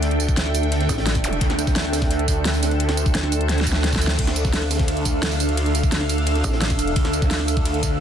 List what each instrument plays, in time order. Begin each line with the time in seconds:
Already playing: detuned saw bass D2, ambient pad D4 A4 E5, analog synth pad D4 A4 E5 G5
0.02 closed hi-hat
0.11 closed hi-hat
0.20 closed hi-hat, tambourine
0.29 kick, tambourine
0.37 snare, closed hi-hat
0.46 snare
0.54 closed hi-hat, open hi-hat, tambourine
0.63 closed hi-hat
0.72 closed hi-hat
0.81 snare, closed hi-hat
0.89 wobble bass A1, kick, snare, closed hi-hat, tambourine
0.98 snare, closed hi-hat
1.06 snare, closed hi-hat
1.15 kick, snare, tambourine
1.24 detuned saw bass E1, closed hi-hat, open hi-hat, tambourine, zap
1.33 closed hi-hat
1.41 detuned saw bass D2, kick, closed hi-hat
1.50 snare, closed hi-hat
1.59 closed hi-hat, tambourine
1.67 kick, snare, tambourine
1.75 ambient pad C5, snare, closed hi-hat
1.85 snare, closed hi-hat
1.93 snare, closed hi-hat, open hi-hat, tambourine
1.97 snare, closed hi-hat
2.02 kick, snare, closed hi-hat
2.11 closed hi-hat
2.19 closed hi-hat
2.28 detuned saw bass D2, kick, closed hi-hat, tambourine
2.45 snare, closed hi-hat
2.54 closed hi-hat, tambourine
2.62 snare, closed hi-hat, open hi-hat, tambourine
2.71 closed hi-hat
2.80 closed hi-hat
2.89 snare, closed hi-hat
2.97 closed hi-hat, tambourine
3.06 kick, closed hi-hat, tambourine
3.14 wobble bass D2, snare, closed hi-hat
3.23 snare
3.32 closed hi-hat, open hi-hat, tambourine
3.41 closed hi-hat
3.49 snare, closed hi-hat
3.58 snare, closed hi-hat
3.61 snare
3.67 kick, closed hi-hat, tambourine
3.72 snare
3.84 snare, closed hi-hat
3.93 kick, snare, tambourine
4.01 closed hi-hat, open hi-hat, tambourine
4.07 snare, closed hi-hat
4.19 detuned saw bass D2, analog synth pad F5, kick, closed hi-hat, crash, ride
4.27 snare, closed hi-hat
4.35 closed hi-hat, tambourine
4.45 kick, snare, tambourine
4.53 ambient pad E6, snare, closed hi-hat, ride
4.62 snare, closed hi-hat
4.70 snare, closed hi-hat, open hi-hat, tambourine
4.75 snare, closed hi-hat
4.79 kick, snare, closed hi-hat
4.88 closed hi-hat, ride
4.97 closed hi-hat
5.05 detuned saw bass D2, kick, closed hi-hat, tambourine
5.22 snare, closed hi-hat, ride
5.31 closed hi-hat, tambourine
5.40 closed hi-hat, open hi-hat, tambourine
5.49 closed hi-hat
5.57 closed hi-hat, ride
5.66 closed hi-hat
5.75 closed hi-hat, tambourine
5.83 kick, tambourine
5.92 snare, closed hi-hat, ride
6.01 snare
6.09 closed hi-hat, open hi-hat, tambourine
6.18 closed hi-hat
6.26 closed hi-hat, ride
6.35 snare, closed hi-hat
6.43 wobble bass A1, kick, snare, closed hi-hat, tambourine
6.53 snare, closed hi-hat
6.61 snare, closed hi-hat, ride
6.70 kick, snare, tambourine
6.79 detuned saw bass E1, closed hi-hat, open hi-hat, tambourine
6.87 closed hi-hat
6.96 detuned saw bass D2, kick, closed hi-hat, ride
7.05 snare, closed hi-hat
7.13 closed hi-hat, tambourine
7.22 kick, snare, tambourine
7.31 ambient pad G5, snare, closed hi-hat, ride
7.40 snare, closed hi-hat
7.48 closed hi-hat, open hi-hat, tambourine
7.57 kick, closed hi-hat
7.66 closed hi-hat, ride
7.74 closed hi-hat
7.83 detuned saw bass D2, kick, closed hi-hat, tambourine